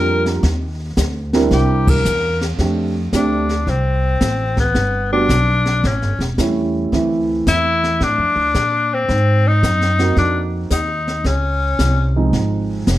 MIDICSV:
0, 0, Header, 1, 5, 480
1, 0, Start_track
1, 0, Tempo, 540541
1, 386, Time_signature, 4, 2, 24, 8
1, 11530, End_track
2, 0, Start_track
2, 0, Title_t, "Tenor saxophone"
2, 0, Program_c, 0, 66
2, 0, Note_on_c, 0, 70, 106
2, 240, Note_off_c, 0, 70, 0
2, 1363, Note_on_c, 0, 67, 71
2, 1687, Note_on_c, 0, 70, 91
2, 1700, Note_off_c, 0, 67, 0
2, 2158, Note_off_c, 0, 70, 0
2, 2801, Note_on_c, 0, 62, 62
2, 3281, Note_on_c, 0, 60, 68
2, 3294, Note_off_c, 0, 62, 0
2, 4077, Note_off_c, 0, 60, 0
2, 4085, Note_on_c, 0, 59, 76
2, 4525, Note_off_c, 0, 59, 0
2, 4557, Note_on_c, 0, 62, 96
2, 5211, Note_on_c, 0, 61, 73
2, 5224, Note_off_c, 0, 62, 0
2, 5523, Note_off_c, 0, 61, 0
2, 6646, Note_on_c, 0, 64, 101
2, 7137, Note_on_c, 0, 62, 84
2, 7151, Note_off_c, 0, 64, 0
2, 7939, Note_on_c, 0, 60, 79
2, 7952, Note_off_c, 0, 62, 0
2, 8417, Note_on_c, 0, 63, 96
2, 8430, Note_off_c, 0, 60, 0
2, 9042, Note_off_c, 0, 63, 0
2, 9046, Note_on_c, 0, 62, 71
2, 9236, Note_off_c, 0, 62, 0
2, 9521, Note_on_c, 0, 63, 68
2, 10007, Note_on_c, 0, 61, 67
2, 10020, Note_off_c, 0, 63, 0
2, 10803, Note_off_c, 0, 61, 0
2, 11530, End_track
3, 0, Start_track
3, 0, Title_t, "Grand piano"
3, 0, Program_c, 1, 0
3, 0, Note_on_c, 1, 55, 70
3, 0, Note_on_c, 1, 58, 67
3, 0, Note_on_c, 1, 62, 65
3, 0, Note_on_c, 1, 65, 63
3, 0, Note_on_c, 1, 70, 80
3, 356, Note_off_c, 1, 55, 0
3, 357, Note_off_c, 1, 58, 0
3, 357, Note_off_c, 1, 62, 0
3, 358, Note_off_c, 1, 65, 0
3, 359, Note_off_c, 1, 70, 0
3, 1190, Note_on_c, 1, 55, 68
3, 1191, Note_on_c, 1, 62, 62
3, 1191, Note_on_c, 1, 64, 57
3, 1192, Note_on_c, 1, 60, 59
3, 1193, Note_on_c, 1, 70, 67
3, 1794, Note_off_c, 1, 55, 0
3, 1794, Note_off_c, 1, 64, 0
3, 1795, Note_off_c, 1, 60, 0
3, 1795, Note_off_c, 1, 62, 0
3, 1796, Note_off_c, 1, 70, 0
3, 2304, Note_on_c, 1, 57, 49
3, 2306, Note_on_c, 1, 62, 42
3, 2307, Note_on_c, 1, 60, 47
3, 2312, Note_on_c, 1, 67, 53
3, 2596, Note_off_c, 1, 57, 0
3, 2597, Note_off_c, 1, 60, 0
3, 2597, Note_off_c, 1, 62, 0
3, 2600, Note_off_c, 1, 67, 0
3, 2786, Note_on_c, 1, 60, 52
3, 2788, Note_on_c, 1, 57, 58
3, 2789, Note_on_c, 1, 62, 51
3, 2794, Note_on_c, 1, 67, 57
3, 3077, Note_off_c, 1, 60, 0
3, 3078, Note_off_c, 1, 57, 0
3, 3078, Note_off_c, 1, 62, 0
3, 3081, Note_off_c, 1, 67, 0
3, 4551, Note_on_c, 1, 55, 62
3, 4552, Note_on_c, 1, 59, 54
3, 4552, Note_on_c, 1, 62, 51
3, 4557, Note_on_c, 1, 66, 64
3, 4691, Note_off_c, 1, 55, 0
3, 4692, Note_off_c, 1, 59, 0
3, 4692, Note_off_c, 1, 62, 0
3, 4694, Note_off_c, 1, 66, 0
3, 5667, Note_on_c, 1, 55, 48
3, 5669, Note_on_c, 1, 57, 47
3, 5673, Note_on_c, 1, 61, 48
3, 5675, Note_on_c, 1, 64, 57
3, 6135, Note_off_c, 1, 57, 0
3, 6141, Note_off_c, 1, 64, 0
3, 6148, Note_off_c, 1, 55, 0
3, 6148, Note_on_c, 1, 57, 49
3, 6151, Note_off_c, 1, 61, 0
3, 6152, Note_on_c, 1, 52, 55
3, 6152, Note_on_c, 1, 60, 46
3, 6155, Note_on_c, 1, 64, 61
3, 7496, Note_off_c, 1, 57, 0
3, 7497, Note_off_c, 1, 52, 0
3, 7497, Note_off_c, 1, 60, 0
3, 7499, Note_off_c, 1, 64, 0
3, 8872, Note_on_c, 1, 66, 51
3, 8873, Note_on_c, 1, 58, 43
3, 8876, Note_on_c, 1, 60, 45
3, 8878, Note_on_c, 1, 63, 54
3, 9478, Note_off_c, 1, 66, 0
3, 9479, Note_off_c, 1, 58, 0
3, 9480, Note_off_c, 1, 60, 0
3, 9481, Note_off_c, 1, 63, 0
3, 10799, Note_on_c, 1, 53, 49
3, 10800, Note_on_c, 1, 56, 51
3, 10804, Note_on_c, 1, 60, 47
3, 10805, Note_on_c, 1, 63, 52
3, 11402, Note_off_c, 1, 53, 0
3, 11403, Note_off_c, 1, 56, 0
3, 11405, Note_off_c, 1, 60, 0
3, 11405, Note_off_c, 1, 63, 0
3, 11530, End_track
4, 0, Start_track
4, 0, Title_t, "Upright bass"
4, 0, Program_c, 2, 32
4, 0, Note_on_c, 2, 41, 83
4, 371, Note_off_c, 2, 41, 0
4, 381, Note_on_c, 2, 39, 83
4, 848, Note_off_c, 2, 39, 0
4, 861, Note_on_c, 2, 38, 93
4, 1329, Note_off_c, 2, 38, 0
4, 1338, Note_on_c, 2, 36, 81
4, 1807, Note_off_c, 2, 36, 0
4, 1823, Note_on_c, 2, 40, 89
4, 2289, Note_off_c, 2, 40, 0
4, 2296, Note_on_c, 2, 41, 72
4, 2766, Note_off_c, 2, 41, 0
4, 2776, Note_on_c, 2, 38, 79
4, 3246, Note_off_c, 2, 38, 0
4, 3258, Note_on_c, 2, 36, 72
4, 3728, Note_off_c, 2, 36, 0
4, 3737, Note_on_c, 2, 33, 82
4, 4207, Note_off_c, 2, 33, 0
4, 4219, Note_on_c, 2, 31, 69
4, 4688, Note_off_c, 2, 31, 0
4, 4697, Note_on_c, 2, 35, 84
4, 5168, Note_off_c, 2, 35, 0
4, 5182, Note_on_c, 2, 33, 73
4, 5345, Note_off_c, 2, 33, 0
4, 5345, Note_on_c, 2, 31, 52
4, 5489, Note_off_c, 2, 31, 0
4, 5495, Note_on_c, 2, 28, 60
4, 5649, Note_off_c, 2, 28, 0
4, 5666, Note_on_c, 2, 40, 75
4, 6133, Note_off_c, 2, 40, 0
4, 6147, Note_on_c, 2, 38, 70
4, 6613, Note_off_c, 2, 38, 0
4, 6631, Note_on_c, 2, 40, 84
4, 7096, Note_off_c, 2, 40, 0
4, 7109, Note_on_c, 2, 45, 70
4, 7267, Note_on_c, 2, 41, 50
4, 7280, Note_off_c, 2, 45, 0
4, 7417, Note_off_c, 2, 41, 0
4, 7422, Note_on_c, 2, 38, 60
4, 7574, Note_off_c, 2, 38, 0
4, 7587, Note_on_c, 2, 46, 75
4, 8054, Note_off_c, 2, 46, 0
4, 8068, Note_on_c, 2, 44, 76
4, 8535, Note_off_c, 2, 44, 0
4, 8551, Note_on_c, 2, 42, 83
4, 9017, Note_off_c, 2, 42, 0
4, 9027, Note_on_c, 2, 41, 78
4, 9494, Note_off_c, 2, 41, 0
4, 9506, Note_on_c, 2, 39, 77
4, 9974, Note_off_c, 2, 39, 0
4, 9984, Note_on_c, 2, 37, 78
4, 10453, Note_off_c, 2, 37, 0
4, 10469, Note_on_c, 2, 36, 86
4, 10936, Note_off_c, 2, 36, 0
4, 10950, Note_on_c, 2, 32, 70
4, 11416, Note_off_c, 2, 32, 0
4, 11430, Note_on_c, 2, 29, 81
4, 11530, Note_off_c, 2, 29, 0
4, 11530, End_track
5, 0, Start_track
5, 0, Title_t, "Drums"
5, 231, Note_on_c, 9, 38, 41
5, 319, Note_off_c, 9, 38, 0
5, 383, Note_on_c, 9, 25, 53
5, 383, Note_on_c, 9, 38, 42
5, 384, Note_on_c, 9, 36, 25
5, 472, Note_off_c, 9, 38, 0
5, 473, Note_off_c, 9, 36, 0
5, 862, Note_on_c, 9, 38, 61
5, 863, Note_on_c, 9, 36, 22
5, 863, Note_on_c, 9, 44, 60
5, 951, Note_off_c, 9, 36, 0
5, 951, Note_off_c, 9, 38, 0
5, 952, Note_off_c, 9, 44, 0
5, 1184, Note_on_c, 9, 38, 41
5, 1272, Note_off_c, 9, 38, 0
5, 1342, Note_off_c, 9, 25, 0
5, 1342, Note_on_c, 9, 25, 50
5, 1342, Note_on_c, 9, 38, 41
5, 1343, Note_on_c, 9, 36, 17
5, 1430, Note_off_c, 9, 38, 0
5, 1431, Note_off_c, 9, 36, 0
5, 1664, Note_on_c, 9, 36, 76
5, 1664, Note_on_c, 9, 51, 70
5, 1752, Note_off_c, 9, 51, 0
5, 1753, Note_off_c, 9, 36, 0
5, 1823, Note_on_c, 9, 44, 64
5, 1912, Note_off_c, 9, 44, 0
5, 2143, Note_on_c, 9, 38, 38
5, 2232, Note_off_c, 9, 38, 0
5, 2296, Note_off_c, 9, 25, 0
5, 2296, Note_on_c, 9, 25, 37
5, 2296, Note_on_c, 9, 38, 34
5, 2298, Note_on_c, 9, 36, 20
5, 2384, Note_off_c, 9, 38, 0
5, 2387, Note_off_c, 9, 36, 0
5, 2778, Note_on_c, 9, 36, 24
5, 2778, Note_on_c, 9, 38, 52
5, 2779, Note_on_c, 9, 44, 59
5, 2866, Note_off_c, 9, 36, 0
5, 2867, Note_off_c, 9, 38, 0
5, 2867, Note_off_c, 9, 44, 0
5, 3101, Note_on_c, 9, 38, 32
5, 3190, Note_off_c, 9, 38, 0
5, 3258, Note_on_c, 9, 36, 17
5, 3263, Note_off_c, 9, 25, 0
5, 3263, Note_on_c, 9, 25, 34
5, 3263, Note_on_c, 9, 38, 31
5, 3347, Note_off_c, 9, 36, 0
5, 3351, Note_off_c, 9, 38, 0
5, 3736, Note_on_c, 9, 38, 49
5, 3737, Note_on_c, 9, 44, 48
5, 3738, Note_on_c, 9, 36, 16
5, 3825, Note_off_c, 9, 38, 0
5, 3826, Note_off_c, 9, 44, 0
5, 3827, Note_off_c, 9, 36, 0
5, 4057, Note_on_c, 9, 38, 31
5, 4062, Note_on_c, 9, 36, 39
5, 4146, Note_off_c, 9, 38, 0
5, 4151, Note_off_c, 9, 36, 0
5, 4214, Note_off_c, 9, 25, 0
5, 4214, Note_on_c, 9, 25, 42
5, 4214, Note_on_c, 9, 38, 34
5, 4219, Note_on_c, 9, 36, 21
5, 4303, Note_off_c, 9, 38, 0
5, 4308, Note_off_c, 9, 36, 0
5, 4701, Note_on_c, 9, 36, 23
5, 4701, Note_on_c, 9, 38, 51
5, 4702, Note_on_c, 9, 44, 56
5, 4790, Note_off_c, 9, 36, 0
5, 4790, Note_off_c, 9, 38, 0
5, 4791, Note_off_c, 9, 44, 0
5, 5022, Note_on_c, 9, 38, 33
5, 5111, Note_off_c, 9, 38, 0
5, 5184, Note_off_c, 9, 25, 0
5, 5184, Note_on_c, 9, 25, 41
5, 5184, Note_on_c, 9, 36, 17
5, 5184, Note_on_c, 9, 38, 34
5, 5273, Note_off_c, 9, 36, 0
5, 5273, Note_off_c, 9, 38, 0
5, 5347, Note_on_c, 9, 38, 26
5, 5435, Note_off_c, 9, 38, 0
5, 5508, Note_on_c, 9, 38, 34
5, 5597, Note_off_c, 9, 38, 0
5, 5666, Note_on_c, 9, 36, 21
5, 5667, Note_on_c, 9, 38, 48
5, 5668, Note_on_c, 9, 44, 50
5, 5755, Note_off_c, 9, 36, 0
5, 5756, Note_off_c, 9, 38, 0
5, 5757, Note_off_c, 9, 44, 0
5, 6149, Note_on_c, 9, 36, 16
5, 6151, Note_off_c, 9, 25, 0
5, 6151, Note_on_c, 9, 25, 41
5, 6151, Note_on_c, 9, 38, 32
5, 6238, Note_off_c, 9, 36, 0
5, 6240, Note_off_c, 9, 38, 0
5, 6630, Note_on_c, 9, 36, 16
5, 6631, Note_on_c, 9, 38, 52
5, 6632, Note_on_c, 9, 44, 58
5, 6719, Note_off_c, 9, 36, 0
5, 6720, Note_off_c, 9, 38, 0
5, 6721, Note_off_c, 9, 44, 0
5, 6959, Note_on_c, 9, 38, 32
5, 7047, Note_off_c, 9, 38, 0
5, 7109, Note_off_c, 9, 25, 0
5, 7109, Note_on_c, 9, 25, 45
5, 7109, Note_on_c, 9, 38, 35
5, 7110, Note_on_c, 9, 36, 18
5, 7198, Note_off_c, 9, 38, 0
5, 7199, Note_off_c, 9, 36, 0
5, 7589, Note_on_c, 9, 38, 50
5, 7590, Note_on_c, 9, 36, 22
5, 7590, Note_on_c, 9, 44, 45
5, 7677, Note_off_c, 9, 38, 0
5, 7678, Note_off_c, 9, 44, 0
5, 7679, Note_off_c, 9, 36, 0
5, 8070, Note_on_c, 9, 36, 17
5, 8073, Note_off_c, 9, 25, 0
5, 8073, Note_on_c, 9, 25, 38
5, 8073, Note_on_c, 9, 38, 36
5, 8159, Note_off_c, 9, 36, 0
5, 8162, Note_off_c, 9, 38, 0
5, 8551, Note_on_c, 9, 36, 19
5, 8555, Note_on_c, 9, 38, 54
5, 8556, Note_on_c, 9, 44, 58
5, 8640, Note_off_c, 9, 36, 0
5, 8644, Note_off_c, 9, 38, 0
5, 8644, Note_off_c, 9, 44, 0
5, 8713, Note_on_c, 9, 38, 24
5, 8802, Note_off_c, 9, 38, 0
5, 8869, Note_on_c, 9, 38, 36
5, 8876, Note_off_c, 9, 38, 0
5, 8876, Note_on_c, 9, 38, 34
5, 8965, Note_off_c, 9, 38, 0
5, 9028, Note_off_c, 9, 25, 0
5, 9028, Note_on_c, 9, 25, 35
5, 9028, Note_on_c, 9, 38, 33
5, 9029, Note_on_c, 9, 36, 20
5, 9117, Note_off_c, 9, 38, 0
5, 9118, Note_off_c, 9, 36, 0
5, 9506, Note_on_c, 9, 38, 50
5, 9507, Note_on_c, 9, 44, 59
5, 9509, Note_on_c, 9, 36, 18
5, 9594, Note_off_c, 9, 38, 0
5, 9595, Note_off_c, 9, 44, 0
5, 9598, Note_off_c, 9, 36, 0
5, 9835, Note_on_c, 9, 38, 31
5, 9924, Note_off_c, 9, 38, 0
5, 9989, Note_on_c, 9, 36, 16
5, 9990, Note_off_c, 9, 25, 0
5, 9990, Note_on_c, 9, 25, 44
5, 9990, Note_on_c, 9, 38, 36
5, 10077, Note_off_c, 9, 36, 0
5, 10079, Note_off_c, 9, 38, 0
5, 10470, Note_on_c, 9, 36, 19
5, 10470, Note_on_c, 9, 38, 53
5, 10470, Note_on_c, 9, 44, 56
5, 10558, Note_off_c, 9, 38, 0
5, 10559, Note_off_c, 9, 36, 0
5, 10559, Note_off_c, 9, 44, 0
5, 10948, Note_off_c, 9, 25, 0
5, 10948, Note_on_c, 9, 25, 37
5, 10948, Note_on_c, 9, 38, 34
5, 10950, Note_on_c, 9, 36, 21
5, 11037, Note_off_c, 9, 38, 0
5, 11039, Note_off_c, 9, 36, 0
5, 11428, Note_on_c, 9, 38, 53
5, 11429, Note_on_c, 9, 44, 50
5, 11431, Note_on_c, 9, 36, 16
5, 11517, Note_off_c, 9, 38, 0
5, 11518, Note_off_c, 9, 44, 0
5, 11519, Note_off_c, 9, 36, 0
5, 11530, Note_off_c, 9, 25, 0
5, 11530, End_track
0, 0, End_of_file